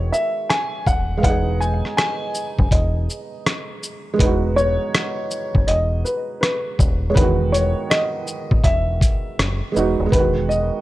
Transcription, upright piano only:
Already playing: C#5
0.12 E5
0.50 G#5
0.87 F#5
1.18 F5
1.24 F#5
1.60 G#5
1.97 G#5
2.71 D#5
4.20 B4
4.56 C#5
5.67 D#5
6.05 B4
6.41 B4
7.10 C#5
7.15 B4
7.52 C#5
7.90 D#5
8.64 E5
10.12 B4
10.49 D#5

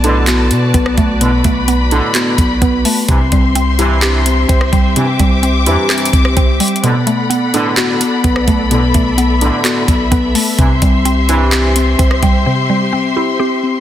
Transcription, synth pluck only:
Already playing: B2 A3 B3
0.04 D4
0.27 F#4
0.74 B3
0.97 A3
1.21 B2
1.45 A3
1.68 B3
1.92 D4
2.15 F#4
2.62 B3
2.85 A3
3.09 C3
3.32 G3
3.55 C4
3.79 E4
4.02 G4
4.49 C4
4.72 G3
4.96 C3
5.20 G3
5.43 C4
5.67 E4
5.90 G4
6.37 C4
6.60 G3
6.83 B2
7.07 A3
7.30 B3
7.54 D4
7.77 F#4
8.24 B3
8.47 A3
8.71 B2
8.95 A3
9.18 B3
9.42 D4
9.64 F#4
10.11 B3
10.35 A3
10.59 C3
10.82 G3
11.05 C4
11.29 E4
11.52 G4
11.99 C4
12.23 G3
12.46 C3
12.69 G3
12.93 C4
13.17 E4
13.39 G4

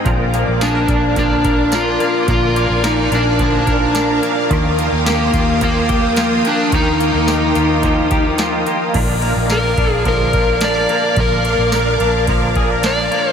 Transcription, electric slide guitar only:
0.63 D4
1.19 D4
1.75 F4
2.30 F4
2.86 D#4
3.14 D4
5.10 A#3
5.64 A#3
6.47 D4
6.75 D#4
9.52 A#4
10.08 A#4
10.64 D5
11.20 A#4
12.86 D5
13.30 C5

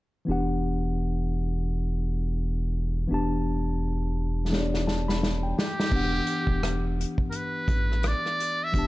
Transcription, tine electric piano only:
0.25 E3 B3 D4
0.30 G4 F#5
3.08 E3 B3 D4
3.12 G4 A5
4.50 E3 B3 D4 G4 C#5
4.60 D5
4.87 A5
5.08 B5
5.43 G5
5.90 E3 B3 D4
5.94 G4 F#5
8.72 E3 B3 D4
8.77 G4 A5

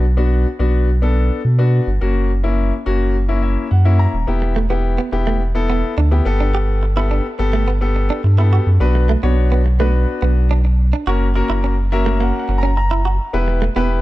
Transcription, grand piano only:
0.17 B3 D4 F#4
0.59 B3 D4 F#4
1.02 B3 D4 A4
1.59 B3 D4 F#4
2.01 A#3 C#4 F#4
2.43 A#3 C#4 E4
2.86 A#3 C#4 F#4
3.28 A#3 C#4 E4
3.43 E5
3.71 F#5
3.85 A#3 C#4 E4
3.99 A#5
4.27 B3 E4 G4
4.70 B3 E4 G4
5.12 B3 E4 G4
5.55 B3 E4 A4
6.11 B3 E4 G4
6.25 B3 G4 A4
6.96 B3 G4 A4
7.39 B3 G4 A4
7.81 B3 G4 A4
8.38 B3 G4 A4
8.80 B3 D4 F#4 B4
9.23 B3 D4 F#4 C#5
9.80 B3 D4 F#4 B4
11.07 A#3 C#4 F#4 A#4
11.35 A#3 C#4 F#4 A#4
11.92 A#3 C#4 F#4 A#4 E5
12.20 F#5
12.39 F#5
12.58 A#5
12.77 A#5
13.33 B3 E4 G4 B4
13.76 B3 E4 G4 B4

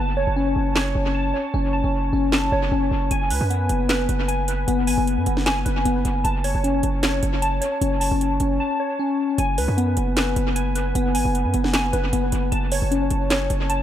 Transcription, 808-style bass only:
Already playing: F#1
0.27 F#1
0.56 F#1
0.95 F#1
1.54 F#1
1.84 F#1
2.13 F#1
2.52 F#1
2.72 F#1
2.91 F#1
3.11 F#1
3.30 C#2
3.41 F#2
3.70 F#1
4.09 F#1
4.68 F#1
4.87 G#1
4.98 F#1
5.17 F#2
5.27 F#1
5.66 F#1
5.85 F#1
6.05 F#1
6.25 F#1
6.55 F#1
6.83 F#1
7.23 F#1
7.81 F#1
8.11 F#1
8.40 F#1
9.38 F#1
9.58 C#2
9.68 F#2
9.97 F#1
10.36 F#1
10.95 F#1
11.15 G#1
11.25 F#1
11.45 F#2
11.54 F#1
11.93 F#1
12.13 F#1
12.32 F#1
12.52 F#1
12.82 F#1
13.11 F#1
13.50 F#1

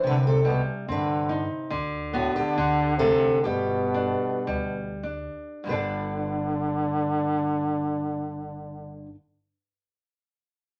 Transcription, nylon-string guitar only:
0.03 C3
0.45 G3
0.88 C4
1.29 D#4
1.70 D3
2.13 B3
2.58 D3
3.01 A3
3.45 G3
3.94 D4
4.47 G3
5.03 D4
5.64 G2 D3 G3
5.71 D4 A4

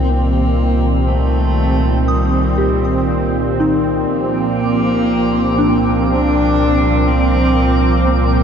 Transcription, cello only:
0.02 C4
0.10 A#3
1.08 A3
2.09 G3
4.09 A#3
6.10 D4
7.08 C4
8.07 A#3

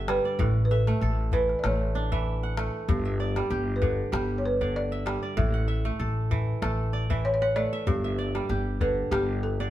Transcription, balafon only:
Already playing: G4
0.09 B4
0.40 A4
0.65 B4
0.71 A4
1.34 B4
1.59 D5
1.66 C#5
3.76 B4
3.82 A4
4.38 C#5
4.45 B4
4.76 D5
5.38 E5
7.25 C#5
7.34 C#5
7.42 C#5
7.56 D5
8.81 B4
9.11 G4
9.43 A4

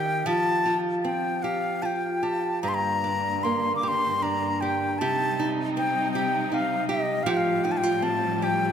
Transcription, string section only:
2.63 G2 D3 A#3
4.99 C3 G3 D#4
7.27 A2 F3 G3

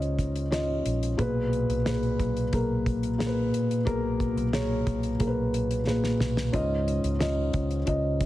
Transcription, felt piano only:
Already playing: G#2 C#4 F4 D#5
0.51 C#4 F4 D#5
1.17 A#2 B2 G#4 B4
1.85 A#2 G#4 B4
2.52 A#3 G#4 A#4
3.18 A#2 G#4 A#4
3.26 B4
3.85 B2 A#3 G#4 A#4
4.52 A#3 G#4 C#5
5.19 A#2 G#4 A#4
5.27 B4
5.86 A#2 G#4 B4
6.52 G#2 C#4 F4 D#5
7.19 C#4 F4 D#5
7.86 C#4 F4 D#5

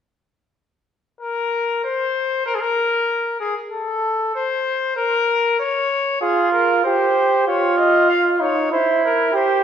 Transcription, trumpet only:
1.21 A#4
1.84 C5
2.46 A#4
2.55 G#4
2.61 A#4
3.40 G#4
3.71 A4
4.35 C5
4.97 A#4
5.60 C#5
6.21 G#4
6.52 A#4
6.84 C5
7.48 C#5
7.78 D#5
8.09 F5
8.42 C#5
8.72 C5
9.05 A#4
9.35 C5

